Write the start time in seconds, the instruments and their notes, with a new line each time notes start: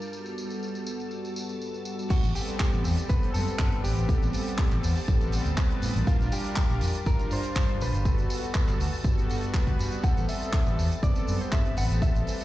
Already playing: string machine G3 A5
0.02 tambourine
0.11 analog synth pad G3 B3 F#4 A4, tambourine
0.26 tambourine
0.38 tambourine
0.50 tambourine
0.63 tambourine
0.75 tambourine
0.87 tambourine
1.00 tambourine
1.11 tambourine
1.25 tambourine
1.36 tambourine
1.49 tambourine
1.62 tambourine
1.74 tambourine
1.85 tambourine
1.99 tambourine
2.10 string machine G3 A5, clean electric guitar F#4, muted fingered electric bass stroke, kick, closed hi-hat, crash, tambourine
2.23 fingered electric bass A1, closed hi-hat, tambourine
2.34 analog synth pad G3 B3 C4 A4, clean electric guitar G4, open hi-hat, tambourine
2.48 closed hi-hat, tambourine
2.60 kick, clap, closed hi-hat, tambourine
2.72 fingered electric bass A1, analog synth pad G3 B3 C4 A4, closed hi-hat, tambourine
2.84 fingered electric bass E2, open hi-hat, tambourine
2.97 closed hi-hat, tambourine
3.09 fingered electric bass G1, analog synth pad G3 B3 C4 A4, clean electric guitar B4, kick, closed hi-hat, tambourine
3.23 closed hi-hat, tambourine
3.34 fingered electric bass F#2, clean electric guitar A4, open hi-hat, tambourine
3.47 analog synth pad G3 B3 C4 B4, closed hi-hat, tambourine
3.59 fingered electric bass G2, kick, clap, closed hi-hat, tambourine
3.72 closed hi-hat
3.84 fingered electric bass A1, clean electric guitar G4, open hi-hat, tambourine
3.96 fingered electric bass A1, analog synth pad G3 B3 C4 A4, closed hi-hat, tambourine
4.09 kick, closed hi-hat, tambourine
4.22 fingered electric bass A1, closed hi-hat, tambourine
4.33 analog synth pad G3 B3 C4 A4, open hi-hat, tambourine
4.47 closed hi-hat, tambourine
4.58 kick, clap, closed hi-hat, tambourine
4.71 fingered electric bass A1, analog synth pad G3 B3 C4 A4, clap, closed hi-hat, tambourine
4.83 fingered electric bass E2, open hi-hat, tambourine
4.96 open hi-hat, tambourine
5.07 fingered electric bass A1, analog synth pad G3 B3 C4 A4, kick, closed hi-hat, tambourine
5.21 closed hi-hat, tambourine
5.32 open hi-hat, tambourine
5.45 fingered electric bass D2, analog synth pad G3 B3 C4 B4, closed hi-hat, tambourine
5.57 kick, clap, closed hi-hat, tambourine
5.71 closed hi-hat
5.82 fingered electric bass A2, open hi-hat, tambourine
5.95 fingered electric bass A1, analog synth pad G3 D4 F4 A#4, closed hi-hat, tambourine
6.07 clean electric guitar F4, muted fingered electric bass stroke, kick, closed hi-hat, tambourine
6.20 fingered electric bass A#1, closed hi-hat, tambourine
6.31 analog synth pad G3 D4 F4 A#4, clean electric guitar G4, open hi-hat, tambourine
6.45 closed hi-hat, tambourine
6.56 kick, clap, closed hi-hat, tambourine
6.69 fingered electric bass A#1, analog synth pad G3 D4 F4 A#4, closed hi-hat, tambourine
6.81 fingered electric bass F2, open hi-hat, tambourine
6.95 closed hi-hat, tambourine
7.05 fingered electric bass G1, analog synth pad G3 D4 F4 A#4, clean electric guitar A#4, kick, closed hi-hat, tambourine
7.19 closed hi-hat, tambourine
7.31 fingered electric bass G2, clean electric guitar C5, open hi-hat, tambourine
7.43 analog synth pad G3 D4 F4 C5, closed hi-hat, tambourine
7.55 fingered electric bass G2, kick, clap, closed hi-hat, tambourine
7.68 closed hi-hat
7.80 fingered electric bass A#1, clean electric guitar B4, open hi-hat, tambourine
7.93 fingered electric bass G1, analog synth pad G3 B3 F#4 A4, closed hi-hat, tambourine
8.05 kick, closed hi-hat, tambourine
8.18 fingered electric bass G1, closed hi-hat, tambourine
8.29 analog synth pad G3 B3 F#4 A4, open hi-hat, tambourine
8.43 closed hi-hat, tambourine
8.55 kick, clap, closed hi-hat, tambourine
8.67 fingered electric bass G1, analog synth pad G3 B3 F#4 A4, clap, closed hi-hat, tambourine
8.79 fingered electric bass D2, open hi-hat, tambourine
8.93 open hi-hat, tambourine
9.04 fingered electric bass G1, analog synth pad G3 B3 F#4 A4, kick, closed hi-hat, tambourine
9.18 closed hi-hat, tambourine
9.29 fingered electric bass G2, open hi-hat, tambourine
9.41 analog synth pad G3 B3 F#4 B4, closed hi-hat, tambourine
9.54 kick, clap, closed hi-hat, tambourine
9.67 fingered electric bass D2, kick, closed hi-hat
9.79 fingered electric bass G2, open hi-hat, tambourine
9.91 analog synth pad G3 B3 C4 A4, closed hi-hat, tambourine
10.04 clean electric guitar F#5, string machine A5, muted fingered electric bass stroke, kick, closed hi-hat, tambourine
10.17 fingered electric bass A1, closed hi-hat, tambourine
10.28 analog synth pad G3 B3 C4 A4, clean electric guitar E5, open hi-hat, tambourine
10.42 closed hi-hat, tambourine
10.53 kick, clap, closed hi-hat, tambourine
10.66 fingered electric bass A1, analog synth pad G3 B3 C4 A4, closed hi-hat, tambourine
10.78 fingered electric bass E2, open hi-hat, tambourine
10.91 closed hi-hat, tambourine
11.02 fingered electric bass G1, analog synth pad G3 B3 C4 A4, clean electric guitar D5, kick, closed hi-hat, tambourine
11.15 closed hi-hat, tambourine
11.27 fingered electric bass F#2, open hi-hat, tambourine
11.41 analog synth pad G3 B3 C4 B4, clean electric guitar C5, closed hi-hat, tambourine
11.52 fingered electric bass G2, clean electric guitar E5, kick, clap, closed hi-hat, tambourine
11.65 closed hi-hat
11.77 fingered electric bass A1, clean electric guitar F#5, open hi-hat, tambourine
11.90 fingered electric bass A1, analog synth pad G3 B3 C4 A4, closed hi-hat, tambourine
12.02 clean electric guitar E5, kick, closed hi-hat, tambourine
12.15 fingered electric bass A1, closed hi-hat, tambourine
12.27 analog synth pad G3 B3 C4 A4, open hi-hat, tambourine
12.40 closed hi-hat, tambourine